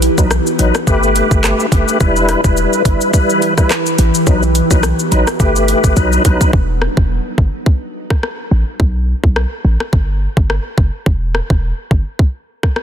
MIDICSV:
0, 0, Header, 1, 5, 480
1, 0, Start_track
1, 0, Key_signature, 1, "minor"
1, 0, Tempo, 566038
1, 1700, Time_signature, 4, 2, 24, 8
1, 10878, End_track
2, 0, Start_track
2, 0, Title_t, "Ambient pad"
2, 0, Program_c, 0, 92
2, 741, Note_on_c, 0, 71, 85
2, 1700, Note_on_c, 0, 52, 84
2, 1700, Note_on_c, 0, 64, 80
2, 1700, Note_on_c, 0, 67, 79
2, 3592, Note_off_c, 0, 71, 0
2, 3601, Note_off_c, 0, 52, 0
2, 3601, Note_off_c, 0, 64, 0
2, 3601, Note_off_c, 0, 67, 0
2, 10878, End_track
3, 0, Start_track
3, 0, Title_t, "Tonewheel organ"
3, 0, Program_c, 1, 16
3, 153, Note_on_c, 1, 54, 80
3, 155, Note_on_c, 1, 63, 72
3, 158, Note_on_c, 1, 71, 90
3, 266, Note_off_c, 1, 54, 0
3, 267, Note_off_c, 1, 63, 0
3, 268, Note_off_c, 1, 71, 0
3, 499, Note_on_c, 1, 54, 83
3, 502, Note_on_c, 1, 63, 76
3, 504, Note_on_c, 1, 71, 89
3, 639, Note_off_c, 1, 54, 0
3, 640, Note_off_c, 1, 63, 0
3, 642, Note_off_c, 1, 71, 0
3, 740, Note_on_c, 1, 57, 95
3, 742, Note_on_c, 1, 67, 91
3, 744, Note_on_c, 1, 71, 105
3, 1409, Note_off_c, 1, 57, 0
3, 1410, Note_off_c, 1, 67, 0
3, 1412, Note_off_c, 1, 71, 0
3, 1457, Note_on_c, 1, 57, 79
3, 1460, Note_on_c, 1, 67, 75
3, 1464, Note_on_c, 1, 71, 86
3, 1682, Note_off_c, 1, 57, 0
3, 1683, Note_off_c, 1, 67, 0
3, 1685, Note_off_c, 1, 71, 0
3, 1697, Note_on_c, 1, 55, 95
3, 1700, Note_on_c, 1, 64, 89
3, 1701, Note_on_c, 1, 71, 113
3, 2041, Note_off_c, 1, 55, 0
3, 2042, Note_off_c, 1, 64, 0
3, 2043, Note_off_c, 1, 71, 0
3, 2070, Note_on_c, 1, 55, 84
3, 2073, Note_on_c, 1, 64, 75
3, 2076, Note_on_c, 1, 71, 89
3, 2393, Note_off_c, 1, 55, 0
3, 2394, Note_off_c, 1, 64, 0
3, 2396, Note_off_c, 1, 71, 0
3, 2416, Note_on_c, 1, 55, 81
3, 2417, Note_on_c, 1, 64, 73
3, 2420, Note_on_c, 1, 71, 88
3, 2641, Note_off_c, 1, 55, 0
3, 2642, Note_off_c, 1, 64, 0
3, 2643, Note_off_c, 1, 71, 0
3, 2656, Note_on_c, 1, 55, 100
3, 2659, Note_on_c, 1, 64, 93
3, 2661, Note_on_c, 1, 71, 105
3, 3000, Note_off_c, 1, 55, 0
3, 3001, Note_off_c, 1, 64, 0
3, 3003, Note_off_c, 1, 71, 0
3, 3031, Note_on_c, 1, 55, 79
3, 3034, Note_on_c, 1, 64, 75
3, 3036, Note_on_c, 1, 71, 89
3, 3145, Note_off_c, 1, 55, 0
3, 3146, Note_off_c, 1, 64, 0
3, 3147, Note_off_c, 1, 71, 0
3, 3618, Note_on_c, 1, 54, 100
3, 3620, Note_on_c, 1, 63, 88
3, 3622, Note_on_c, 1, 71, 107
3, 3758, Note_off_c, 1, 54, 0
3, 3759, Note_off_c, 1, 63, 0
3, 3761, Note_off_c, 1, 71, 0
3, 3991, Note_on_c, 1, 54, 78
3, 3993, Note_on_c, 1, 63, 75
3, 3996, Note_on_c, 1, 71, 91
3, 4105, Note_off_c, 1, 54, 0
3, 4106, Note_off_c, 1, 63, 0
3, 4107, Note_off_c, 1, 71, 0
3, 4337, Note_on_c, 1, 54, 78
3, 4339, Note_on_c, 1, 63, 72
3, 4341, Note_on_c, 1, 71, 85
3, 4478, Note_off_c, 1, 54, 0
3, 4479, Note_off_c, 1, 63, 0
3, 4480, Note_off_c, 1, 71, 0
3, 4577, Note_on_c, 1, 57, 97
3, 4580, Note_on_c, 1, 67, 90
3, 4582, Note_on_c, 1, 71, 108
3, 5053, Note_off_c, 1, 71, 0
3, 5057, Note_on_c, 1, 54, 92
3, 5059, Note_off_c, 1, 57, 0
3, 5060, Note_off_c, 1, 67, 0
3, 5060, Note_on_c, 1, 63, 87
3, 5063, Note_on_c, 1, 71, 99
3, 5282, Note_off_c, 1, 54, 0
3, 5283, Note_off_c, 1, 63, 0
3, 5285, Note_off_c, 1, 71, 0
3, 5295, Note_on_c, 1, 54, 75
3, 5298, Note_on_c, 1, 63, 73
3, 5301, Note_on_c, 1, 71, 88
3, 5521, Note_off_c, 1, 54, 0
3, 5522, Note_off_c, 1, 63, 0
3, 5524, Note_off_c, 1, 71, 0
3, 10878, End_track
4, 0, Start_track
4, 0, Title_t, "808-style bass"
4, 0, Program_c, 2, 38
4, 153, Note_on_c, 2, 35, 106
4, 342, Note_off_c, 2, 35, 0
4, 501, Note_on_c, 2, 33, 93
4, 606, Note_off_c, 2, 33, 0
4, 739, Note_on_c, 2, 31, 100
4, 1034, Note_off_c, 2, 31, 0
4, 1112, Note_on_c, 2, 31, 104
4, 1302, Note_off_c, 2, 31, 0
4, 1458, Note_on_c, 2, 30, 96
4, 1564, Note_off_c, 2, 30, 0
4, 1701, Note_on_c, 2, 28, 113
4, 1995, Note_off_c, 2, 28, 0
4, 2072, Note_on_c, 2, 28, 104
4, 2262, Note_off_c, 2, 28, 0
4, 2419, Note_on_c, 2, 31, 107
4, 2525, Note_off_c, 2, 31, 0
4, 3381, Note_on_c, 2, 33, 96
4, 3486, Note_off_c, 2, 33, 0
4, 3620, Note_on_c, 2, 35, 100
4, 3914, Note_off_c, 2, 35, 0
4, 3992, Note_on_c, 2, 35, 103
4, 4181, Note_off_c, 2, 35, 0
4, 4340, Note_on_c, 2, 33, 96
4, 4446, Note_off_c, 2, 33, 0
4, 4578, Note_on_c, 2, 31, 100
4, 4873, Note_off_c, 2, 31, 0
4, 4951, Note_on_c, 2, 31, 91
4, 5036, Note_off_c, 2, 31, 0
4, 5060, Note_on_c, 2, 35, 101
4, 5248, Note_off_c, 2, 35, 0
4, 5300, Note_on_c, 2, 35, 95
4, 5406, Note_off_c, 2, 35, 0
4, 5540, Note_on_c, 2, 28, 112
4, 5834, Note_off_c, 2, 28, 0
4, 5912, Note_on_c, 2, 28, 98
4, 6102, Note_off_c, 2, 28, 0
4, 6258, Note_on_c, 2, 31, 93
4, 6364, Note_off_c, 2, 31, 0
4, 7219, Note_on_c, 2, 33, 94
4, 7325, Note_off_c, 2, 33, 0
4, 7460, Note_on_c, 2, 35, 110
4, 7754, Note_off_c, 2, 35, 0
4, 7832, Note_on_c, 2, 35, 101
4, 8021, Note_off_c, 2, 35, 0
4, 8180, Note_on_c, 2, 33, 89
4, 8285, Note_off_c, 2, 33, 0
4, 8420, Note_on_c, 2, 31, 102
4, 8714, Note_off_c, 2, 31, 0
4, 8793, Note_on_c, 2, 31, 99
4, 8982, Note_off_c, 2, 31, 0
4, 9138, Note_on_c, 2, 30, 92
4, 9245, Note_off_c, 2, 30, 0
4, 9381, Note_on_c, 2, 28, 104
4, 9675, Note_off_c, 2, 28, 0
4, 9753, Note_on_c, 2, 28, 97
4, 9942, Note_off_c, 2, 28, 0
4, 10099, Note_on_c, 2, 31, 97
4, 10205, Note_off_c, 2, 31, 0
4, 10878, End_track
5, 0, Start_track
5, 0, Title_t, "Drums"
5, 19, Note_on_c, 9, 42, 78
5, 19, Note_on_c, 9, 82, 56
5, 104, Note_off_c, 9, 42, 0
5, 104, Note_off_c, 9, 82, 0
5, 152, Note_on_c, 9, 36, 88
5, 153, Note_on_c, 9, 82, 80
5, 237, Note_off_c, 9, 36, 0
5, 238, Note_off_c, 9, 82, 0
5, 260, Note_on_c, 9, 37, 100
5, 261, Note_on_c, 9, 82, 73
5, 345, Note_off_c, 9, 37, 0
5, 346, Note_off_c, 9, 82, 0
5, 396, Note_on_c, 9, 82, 62
5, 481, Note_off_c, 9, 82, 0
5, 502, Note_on_c, 9, 42, 78
5, 502, Note_on_c, 9, 82, 56
5, 587, Note_off_c, 9, 42, 0
5, 587, Note_off_c, 9, 82, 0
5, 633, Note_on_c, 9, 82, 70
5, 634, Note_on_c, 9, 37, 103
5, 718, Note_off_c, 9, 82, 0
5, 719, Note_off_c, 9, 37, 0
5, 739, Note_on_c, 9, 36, 98
5, 741, Note_on_c, 9, 82, 78
5, 824, Note_off_c, 9, 36, 0
5, 826, Note_off_c, 9, 82, 0
5, 875, Note_on_c, 9, 82, 56
5, 960, Note_off_c, 9, 82, 0
5, 981, Note_on_c, 9, 42, 84
5, 981, Note_on_c, 9, 82, 61
5, 1066, Note_off_c, 9, 42, 0
5, 1066, Note_off_c, 9, 82, 0
5, 1113, Note_on_c, 9, 36, 101
5, 1114, Note_on_c, 9, 82, 76
5, 1197, Note_off_c, 9, 36, 0
5, 1199, Note_off_c, 9, 82, 0
5, 1218, Note_on_c, 9, 82, 67
5, 1221, Note_on_c, 9, 37, 96
5, 1221, Note_on_c, 9, 39, 95
5, 1303, Note_off_c, 9, 82, 0
5, 1306, Note_off_c, 9, 37, 0
5, 1306, Note_off_c, 9, 39, 0
5, 1355, Note_on_c, 9, 82, 53
5, 1440, Note_off_c, 9, 82, 0
5, 1458, Note_on_c, 9, 36, 91
5, 1461, Note_on_c, 9, 42, 75
5, 1461, Note_on_c, 9, 82, 55
5, 1543, Note_off_c, 9, 36, 0
5, 1545, Note_off_c, 9, 42, 0
5, 1545, Note_off_c, 9, 82, 0
5, 1597, Note_on_c, 9, 82, 74
5, 1681, Note_off_c, 9, 82, 0
5, 1700, Note_on_c, 9, 36, 120
5, 1700, Note_on_c, 9, 82, 80
5, 1785, Note_off_c, 9, 36, 0
5, 1785, Note_off_c, 9, 82, 0
5, 1834, Note_on_c, 9, 82, 43
5, 1918, Note_off_c, 9, 82, 0
5, 1938, Note_on_c, 9, 42, 74
5, 1938, Note_on_c, 9, 82, 53
5, 1939, Note_on_c, 9, 37, 88
5, 2023, Note_off_c, 9, 42, 0
5, 2023, Note_off_c, 9, 82, 0
5, 2024, Note_off_c, 9, 37, 0
5, 2072, Note_on_c, 9, 36, 94
5, 2072, Note_on_c, 9, 82, 78
5, 2157, Note_off_c, 9, 36, 0
5, 2157, Note_off_c, 9, 82, 0
5, 2179, Note_on_c, 9, 82, 80
5, 2264, Note_off_c, 9, 82, 0
5, 2315, Note_on_c, 9, 82, 64
5, 2400, Note_off_c, 9, 82, 0
5, 2418, Note_on_c, 9, 36, 100
5, 2421, Note_on_c, 9, 42, 79
5, 2421, Note_on_c, 9, 82, 58
5, 2503, Note_off_c, 9, 36, 0
5, 2506, Note_off_c, 9, 42, 0
5, 2506, Note_off_c, 9, 82, 0
5, 2553, Note_on_c, 9, 82, 70
5, 2637, Note_off_c, 9, 82, 0
5, 2658, Note_on_c, 9, 36, 94
5, 2660, Note_on_c, 9, 82, 80
5, 2743, Note_off_c, 9, 36, 0
5, 2744, Note_off_c, 9, 82, 0
5, 2795, Note_on_c, 9, 82, 59
5, 2879, Note_off_c, 9, 82, 0
5, 2902, Note_on_c, 9, 42, 84
5, 2902, Note_on_c, 9, 82, 61
5, 2987, Note_off_c, 9, 42, 0
5, 2987, Note_off_c, 9, 82, 0
5, 3033, Note_on_c, 9, 36, 107
5, 3033, Note_on_c, 9, 37, 89
5, 3035, Note_on_c, 9, 82, 75
5, 3117, Note_off_c, 9, 36, 0
5, 3118, Note_off_c, 9, 37, 0
5, 3120, Note_off_c, 9, 82, 0
5, 3139, Note_on_c, 9, 82, 72
5, 3142, Note_on_c, 9, 37, 97
5, 3142, Note_on_c, 9, 39, 99
5, 3224, Note_off_c, 9, 82, 0
5, 3227, Note_off_c, 9, 37, 0
5, 3227, Note_off_c, 9, 39, 0
5, 3276, Note_on_c, 9, 82, 52
5, 3360, Note_off_c, 9, 82, 0
5, 3379, Note_on_c, 9, 42, 78
5, 3379, Note_on_c, 9, 82, 55
5, 3464, Note_off_c, 9, 42, 0
5, 3464, Note_off_c, 9, 82, 0
5, 3516, Note_on_c, 9, 82, 74
5, 3601, Note_off_c, 9, 82, 0
5, 3619, Note_on_c, 9, 82, 77
5, 3620, Note_on_c, 9, 36, 127
5, 3704, Note_off_c, 9, 82, 0
5, 3705, Note_off_c, 9, 36, 0
5, 3753, Note_on_c, 9, 82, 43
5, 3838, Note_off_c, 9, 82, 0
5, 3858, Note_on_c, 9, 42, 77
5, 3858, Note_on_c, 9, 82, 55
5, 3943, Note_off_c, 9, 42, 0
5, 3943, Note_off_c, 9, 82, 0
5, 3992, Note_on_c, 9, 36, 91
5, 3992, Note_on_c, 9, 82, 76
5, 4076, Note_off_c, 9, 36, 0
5, 4077, Note_off_c, 9, 82, 0
5, 4098, Note_on_c, 9, 37, 100
5, 4098, Note_on_c, 9, 82, 78
5, 4182, Note_off_c, 9, 37, 0
5, 4183, Note_off_c, 9, 82, 0
5, 4234, Note_on_c, 9, 82, 63
5, 4318, Note_off_c, 9, 82, 0
5, 4341, Note_on_c, 9, 42, 76
5, 4341, Note_on_c, 9, 82, 59
5, 4426, Note_off_c, 9, 42, 0
5, 4426, Note_off_c, 9, 82, 0
5, 4472, Note_on_c, 9, 82, 71
5, 4473, Note_on_c, 9, 37, 104
5, 4557, Note_off_c, 9, 37, 0
5, 4557, Note_off_c, 9, 82, 0
5, 4578, Note_on_c, 9, 36, 95
5, 4579, Note_on_c, 9, 82, 78
5, 4663, Note_off_c, 9, 36, 0
5, 4663, Note_off_c, 9, 82, 0
5, 4714, Note_on_c, 9, 82, 55
5, 4799, Note_off_c, 9, 82, 0
5, 4819, Note_on_c, 9, 42, 86
5, 4819, Note_on_c, 9, 82, 60
5, 4904, Note_off_c, 9, 42, 0
5, 4904, Note_off_c, 9, 82, 0
5, 4952, Note_on_c, 9, 36, 103
5, 4953, Note_on_c, 9, 82, 73
5, 5036, Note_off_c, 9, 36, 0
5, 5038, Note_off_c, 9, 82, 0
5, 5058, Note_on_c, 9, 82, 70
5, 5060, Note_on_c, 9, 36, 63
5, 5143, Note_off_c, 9, 82, 0
5, 5144, Note_off_c, 9, 36, 0
5, 5194, Note_on_c, 9, 82, 52
5, 5279, Note_off_c, 9, 82, 0
5, 5299, Note_on_c, 9, 42, 78
5, 5299, Note_on_c, 9, 82, 54
5, 5300, Note_on_c, 9, 36, 99
5, 5384, Note_off_c, 9, 42, 0
5, 5384, Note_off_c, 9, 82, 0
5, 5385, Note_off_c, 9, 36, 0
5, 5434, Note_on_c, 9, 36, 96
5, 5436, Note_on_c, 9, 82, 76
5, 5519, Note_off_c, 9, 36, 0
5, 5521, Note_off_c, 9, 82, 0
5, 5540, Note_on_c, 9, 36, 118
5, 5625, Note_off_c, 9, 36, 0
5, 5780, Note_on_c, 9, 37, 87
5, 5865, Note_off_c, 9, 37, 0
5, 5912, Note_on_c, 9, 36, 86
5, 5997, Note_off_c, 9, 36, 0
5, 6258, Note_on_c, 9, 36, 88
5, 6343, Note_off_c, 9, 36, 0
5, 6498, Note_on_c, 9, 36, 88
5, 6583, Note_off_c, 9, 36, 0
5, 6872, Note_on_c, 9, 36, 102
5, 6873, Note_on_c, 9, 37, 85
5, 6957, Note_off_c, 9, 36, 0
5, 6958, Note_off_c, 9, 37, 0
5, 6981, Note_on_c, 9, 37, 92
5, 7066, Note_off_c, 9, 37, 0
5, 7460, Note_on_c, 9, 36, 114
5, 7545, Note_off_c, 9, 36, 0
5, 7832, Note_on_c, 9, 36, 89
5, 7917, Note_off_c, 9, 36, 0
5, 7939, Note_on_c, 9, 37, 93
5, 8024, Note_off_c, 9, 37, 0
5, 8314, Note_on_c, 9, 37, 100
5, 8399, Note_off_c, 9, 37, 0
5, 8419, Note_on_c, 9, 36, 95
5, 8504, Note_off_c, 9, 36, 0
5, 8793, Note_on_c, 9, 36, 99
5, 8878, Note_off_c, 9, 36, 0
5, 8903, Note_on_c, 9, 37, 93
5, 8988, Note_off_c, 9, 37, 0
5, 9138, Note_on_c, 9, 36, 89
5, 9223, Note_off_c, 9, 36, 0
5, 9381, Note_on_c, 9, 36, 120
5, 9466, Note_off_c, 9, 36, 0
5, 9622, Note_on_c, 9, 37, 87
5, 9706, Note_off_c, 9, 37, 0
5, 9753, Note_on_c, 9, 36, 85
5, 9838, Note_off_c, 9, 36, 0
5, 10099, Note_on_c, 9, 36, 92
5, 10184, Note_off_c, 9, 36, 0
5, 10339, Note_on_c, 9, 36, 90
5, 10424, Note_off_c, 9, 36, 0
5, 10713, Note_on_c, 9, 36, 102
5, 10713, Note_on_c, 9, 37, 85
5, 10798, Note_off_c, 9, 36, 0
5, 10798, Note_off_c, 9, 37, 0
5, 10822, Note_on_c, 9, 37, 93
5, 10878, Note_off_c, 9, 37, 0
5, 10878, End_track
0, 0, End_of_file